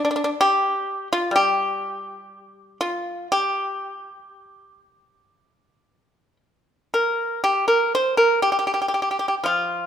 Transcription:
0.05 0.08 D4 medium
0.11 0.15 D4 soft
0.16 0.21 D4 medium
0.24 0.29 D4 medium
0.41 1.07 G4 medium
1.13 1.34 F4 medium
1.31 4.29 G3 soft
1.36 2.77 G4 medium
2.81 3.27 F4 medium
3.32 6.36 G4 medium
6.94 7.40 A#4 medium
7.44 7.67 G4 medium
7.68 7.91 A#4 medium
7.95 8.17 C5 medium
8.17 8.42 A#4 medium
8.42 8.50 G4 medium
8.52 8.58 G4 soft
8.59 8.66 G4 soft
8.67 8.73 G4 soft
8.74 8.80 G4 soft
8.82 8.87 G4 soft
8.88 8.93 G4 soft
8.94 9.01 G4 soft
9.02 9.10 G4 soft
9.11 9.18 G4 soft
9.19 9.26 G4 soft
9.28 9.34 G4 soft
9.44 9.86 F3 soft
9.44 9.86 F4 medium

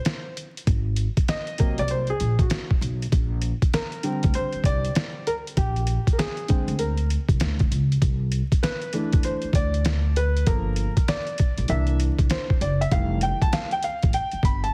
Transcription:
0.00 0.33 C5 medium
0.05 snare loud
0.05 closed hi-hat medium
0.37 closed hi-hat medium
0.57 closed hi-hat soft
0.67 1.05 G#1 loud
0.67 kick medium
0.67 closed hi-hat medium
0.96 closed hi-hat medium
1.17 kick medium
1.17 closed hi-hat medium
1.28 1.80 D#5 loud
1.28 snare loud
1.28 closed hi-hat medium
1.47 closed hi-hat soft
1.58 2.02 C3 medium
1.58 2.03 F#3 medium
1.58 2.03 A#3 medium
1.58 kick medium
1.58 closed hi-hat medium
1.78 2.10 C2 medium
1.78 1.89 D5 loud
1.78 closed hi-hat soft
1.88 2.10 C5 medium
1.88 closed hi-hat medium
2.07 2.41 G#4 medium
2.07 closed hi-hat soft
2.20 2.44 A#1 medium
2.20 closed hi-hat medium
2.39 2.69 F#4 medium
2.39 kick medium
2.39 closed hi-hat soft
2.50 snare loud
2.50 closed hi-hat medium
2.71 kick medium
2.81 3.05 B1 medium
2.81 closed hi-hat medium
3.02 closed hi-hat soft
3.12 3.51 A#1 medium
3.12 kick medium
3.12 closed hi-hat medium
3.42 closed hi-hat medium
3.62 kick medium
3.62 closed hi-hat medium
3.74 4.37 A#4 medium
3.74 snare loud
3.74 closed hi-hat loud
3.92 closed hi-hat soft
4.03 5.53 D3 medium
4.03 5.53 G3 medium
4.03 5.53 C4 medium
4.03 closed hi-hat medium
4.23 4.32 D2 medium
4.23 kick medium
4.23 closed hi-hat soft
4.34 4.66 C5 loud
4.34 closed hi-hat medium
4.52 muted upright bass stroke soft
4.52 closed hi-hat soft
4.64 4.88 C2 medium
4.64 5.28 D5 loud
4.64 kick medium
4.64 closed hi-hat medium
4.85 closed hi-hat soft
4.95 snare loud
4.95 closed hi-hat medium
5.27 5.34 A#4 loud
5.27 closed hi-hat medium
5.47 closed hi-hat soft
5.57 5.95 A#1 loud
5.57 6.15 G4 medium
5.57 kick loud
5.57 closed hi-hat medium
5.76 closed hi-hat soft
5.87 closed hi-hat medium
6.07 kick medium
6.07 closed hi-hat medium
6.13 6.18 A#4 medium
6.18 6.81 G#4 medium
6.18 snare loud
6.18 closed hi-hat loud
6.37 closed hi-hat soft
6.48 6.92 D3 medium
6.48 6.93 G#3 soft
6.48 6.93 C4 medium
6.48 kick medium
6.48 closed hi-hat medium
6.68 7.15 D2 medium
6.68 closed hi-hat soft
6.79 7.08 A#4 medium
6.79 closed hi-hat medium
6.97 closed hi-hat soft
7.10 closed hi-hat medium
7.29 7.38 C2 medium
7.29 kick medium
7.29 closed hi-hat soft
7.40 7.64 D2 medium
7.40 snare loud
7.40 closed hi-hat medium
7.59 kick medium
7.59 closed hi-hat soft
7.71 7.95 C#2 medium
7.71 closed hi-hat medium
7.92 closed hi-hat soft
8.02 8.40 C2 loud
8.02 kick medium
8.02 closed hi-hat medium
8.32 closed hi-hat medium
8.52 kick medium
8.52 closed hi-hat medium
8.63 9.26 B4 medium
8.63 snare loud
8.63 closed hi-hat loud
8.82 closed hi-hat soft
8.93 10.43 E3 medium
8.93 10.43 A3 medium
8.93 10.43 D4 medium
8.93 closed hi-hat medium
9.13 9.22 E2 medium
9.13 kick medium
9.13 closed hi-hat soft
9.23 9.56 C5 medium
9.23 closed hi-hat medium
9.42 muted upright bass stroke soft
9.42 closed hi-hat soft
9.53 10.42 D2 medium
9.53 10.18 D5 medium
9.53 kick medium
9.53 closed hi-hat medium
9.74 closed hi-hat soft
9.85 snare loud
9.85 closed hi-hat medium
10.16 10.48 B4 medium
10.16 closed hi-hat medium
10.37 closed hi-hat soft
10.46 10.85 G1 loud
10.46 10.90 F3 medium
10.46 10.91 A#3 medium
10.46 10.91 A4 medium
10.46 11.10 A#4 medium
10.46 kick medium
10.46 closed hi-hat medium
10.76 closed hi-hat medium
10.97 kick medium
10.97 closed hi-hat medium
11.08 11.71 D5 medium
11.08 snare loud
11.08 closed hi-hat loud
11.27 closed hi-hat soft
11.38 kick medium
11.38 closed hi-hat medium
11.58 11.67 A#1 medium
11.58 closed hi-hat soft
11.68 12.08 C2 loud
11.68 12.57 E3 medium
11.68 12.57 A#3 soft
11.68 12.57 D4 medium
11.68 11.98 E5 medium
11.68 closed hi-hat medium
11.87 closed hi-hat soft
12.00 closed hi-hat medium
12.19 12.28 C2 medium
12.19 kick medium
12.19 closed hi-hat soft
12.30 12.62 C5 medium
12.30 snare loud
12.30 closed hi-hat medium
12.50 kick medium
12.61 12.85 F#1 medium
12.61 12.81 D5 medium
12.61 closed hi-hat medium
12.81 12.92 E5 medium
12.81 closed hi-hat medium
12.91 13.30 F1 loud
12.91 13.80 E3 medium
12.91 13.79 G3 medium
12.91 13.80 A3 medium
12.91 13.24 F5 loud
12.91 kick loud
12.91 closed hi-hat medium
13.21 13.42 G5 medium
13.21 closed hi-hat medium
13.42 13.53 A5 loud
13.42 kick medium
13.42 closed hi-hat medium
13.53 13.73 F5 medium
13.53 snare loud
13.53 closed hi-hat loud
13.71 13.84 G5 loud
13.71 closed hi-hat soft
13.83 14.15 F5 medium
13.83 closed hi-hat medium
14.03 14.12 A1 medium
14.03 kick loud
14.03 closed hi-hat soft
14.13 14.46 G5 loud
14.13 closed hi-hat medium
14.32 muted upright bass stroke soft
14.32 closed hi-hat soft
14.43 14.67 G1 medium
14.43 14.65 B5 loud
14.43 kick loud
14.43 closed hi-hat medium
14.64 14.74 A5 medium
14.64 closed hi-hat soft

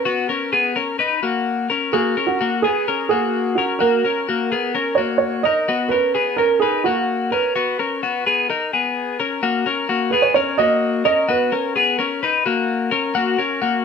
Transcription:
0.00 0.72 B4 medium
0.05 0.29 B3 medium
0.05 0.29 F#4 medium
0.29 0.53 C#4 medium
0.29 0.52 A#4 medium
0.53 0.77 B3 medium
0.53 0.76 G#4 medium
0.76 1.00 C#4 soft
0.76 0.99 A#4 medium
0.99 1.22 D#4 medium
0.99 1.23 B4 medium
1.23 1.67 A#3 medium
1.23 1.67 F#4 medium
1.70 1.94 C#4 soft
1.70 1.93 A#4 medium
1.93 2.17 A#3 medium
1.93 2.17 F#4 medium
1.93 2.29 G#4 medium
2.17 2.41 C#4 medium
2.17 2.41 A#4 medium
2.27 2.64 F#4 medium
2.41 2.64 A#3 medium
2.41 2.64 F#4 medium
2.62 2.88 B3 soft
2.62 3.08 G#4 medium
2.62 2.88 G#4 medium
2.88 3.11 C#4 medium
2.88 3.11 A#4 medium
3.09 3.55 A#3 medium
3.09 3.55 F#4 medium
3.09 3.58 G#4 medium
3.55 3.81 C#4 medium
3.55 3.81 F#4 medium
3.55 3.81 A#4 medium
3.79 4.05 A#3 medium
3.79 4.04 F#4 medium
3.79 5.01 A#4 medium
4.05 4.28 C#4 medium
4.05 4.28 A#4 medium
4.29 4.52 A#3 medium
4.29 4.52 F#4 medium
4.52 4.75 B3 medium
4.52 4.74 G#4 medium
4.75 4.98 C#4 medium
4.75 4.98 A#4 medium
4.95 5.43 A#3 medium
4.95 5.42 F#4 medium
4.95 5.16 C#5 medium
5.18 5.44 C#5 medium
5.43 5.68 D#4 soft
5.43 5.69 A#4 medium
5.43 5.92 D#5 medium
5.68 5.92 B3 medium
5.68 5.92 F#4 medium
5.89 6.16 C#4 medium
5.89 6.14 A#4 medium
5.89 6.39 B4 loud
6.15 6.39 B3 medium
6.15 6.38 G#4 medium
6.37 6.62 C#4 medium
6.37 6.62 A#4 medium
6.37 6.61 A#4 medium
6.60 6.85 D#4 medium
6.60 6.83 G#4 medium
6.60 6.85 B4 medium
6.84 7.30 A#3 medium
6.84 7.28 F#4 medium
6.84 7.30 F#4 medium
7.31 7.56 C#4 medium
7.31 7.55 A#4 medium
7.31 8.21 B4 medium
7.56 7.79 B3 medium
7.56 7.79 F#4 medium
7.79 8.03 C#4 medium
7.79 8.03 A#4 medium
8.03 8.26 B3 medium
8.03 8.26 F#4 medium
8.27 8.50 B3 soft
8.27 8.49 G#4 medium
8.50 8.73 D#4 medium
8.50 8.73 A#4 medium
8.73 9.17 B3 medium
8.73 9.17 G#4 medium
9.20 9.43 C#4 soft
9.20 9.43 A#4 medium
9.43 9.66 A#3 medium
9.43 9.66 F#4 medium
9.66 9.89 C#4 medium
9.66 9.89 A#4 medium
9.89 10.13 A#3 medium
9.89 10.13 F#4 medium
10.10 10.36 B3 medium
10.10 10.36 G#4 medium
10.10 10.24 B4 medium
10.22 10.33 C#5 medium
10.34 10.59 C#4 medium
10.34 10.59 A#4 medium
10.34 10.59 C#5 medium
10.58 11.03 A#3 medium
10.58 11.03 F#4 medium
10.58 11.03 D#5 loud
11.05 11.29 C#4 soft
11.05 11.29 A#4 medium
11.05 11.29 D#5 medium
11.29 11.52 B3 medium
11.29 11.52 F#4 medium
11.29 11.95 B4 medium
11.52 11.76 C#4 medium
11.52 11.75 A#4 medium
11.76 11.99 B3 medium
11.76 11.98 G#4 medium
11.99 12.23 C#4 medium
11.99 12.22 A#4 medium
12.23 12.46 D#4 medium
12.23 12.46 B4 medium
12.46 12.90 A#3 medium
12.46 12.89 F#4 medium
12.91 13.15 C#4 medium
12.91 13.15 A#4 medium
13.15 13.39 A#3 medium
13.15 13.38 F#4 loud
13.38 13.62 C#4 medium
13.38 13.62 A#4 medium
13.62 13.85 A#3 medium
13.62 13.85 F#4 medium

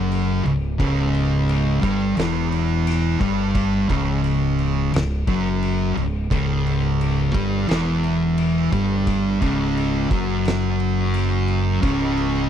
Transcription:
0.00 0.41 F#1 medium
0.00 0.43 F#2 medium
0.00 0.44 F#3 medium
0.11 crash medium
0.44 0.77 C#1 medium
0.44 0.72 C#2 medium
0.44 crash medium
0.78 1.79 C#1 loud
0.78 1.80 C#2 medium
0.78 1.81 C#3 loud
0.78 kick loud
0.78 crash medium
1.14 crash medium
1.49 crash medium
1.81 2.15 G1 loud
1.81 2.15 G2 loud
1.81 2.16 G3 loud
1.81 kick loud
1.81 crash medium
2.16 3.16 E1 loud
2.16 3.19 E2 loud
2.16 3.19 E3 loud
2.16 snare loud
2.16 crash medium
2.52 crash medium
2.87 snare soft
2.87 crash medium
3.19 3.86 G1 medium
3.19 3.88 G2 medium
3.19 3.88 G3 loud
3.19 kick loud
3.19 crash medium
3.55 kick loud
3.55 crash medium
3.88 4.89 C#1 medium
3.88 4.91 C#2 medium
3.88 4.92 C#3 loud
3.88 kick loud
3.88 crash medium
4.24 crash medium
4.59 crash medium
4.93 5.25 C#1 medium
4.93 5.20 C#2 medium
4.93 snare loud
4.93 crash medium
5.27 5.92 F#1 medium
5.27 5.95 F#2 loud
5.27 5.96 F#3 loud
5.27 kick loud
5.27 crash medium
5.62 crash medium
5.96 6.28 C#1 medium
5.96 6.24 C#2 medium
5.96 crash medium
6.31 7.30 C#1 loud
6.31 7.33 C#2 medium
6.31 7.34 C#3 loud
6.31 kick loud
6.31 crash medium
6.67 crash medium
7.01 crash medium
7.34 7.67 G1 loud
7.34 7.67 G2 medium
7.34 7.68 G3 loud
7.34 kick loud
7.34 crash medium
7.69 8.68 E1 medium
7.69 8.71 E2 medium
7.69 8.72 E3 loud
7.69 snare loud
7.69 crash medium
8.04 crash medium
8.38 crash medium
8.72 9.38 G1 loud
8.72 9.40 G2 loud
8.72 9.40 G3 loud
8.72 kick loud
8.72 crash medium
9.07 kick loud
9.07 crash medium
9.41 10.07 C#1 loud
9.41 10.09 C#2 loud
9.41 10.10 C#3 loud
9.41 kick loud
9.41 crash medium
9.77 crash medium
10.10 11.79 F#1 medium
10.10 11.81 F#2 medium
10.10 11.82 F#3 loud
10.10 kick loud
10.10 crash medium
10.45 snare loud
10.45 crash medium
10.80 crash medium
11.14 crash medium
11.48 crash medium
11.82 12.49 C#1 loud
11.82 12.49 C#2 medium
11.82 12.49 C#3 loud
11.82 kick loud
11.82 crash medium
12.17 crash medium

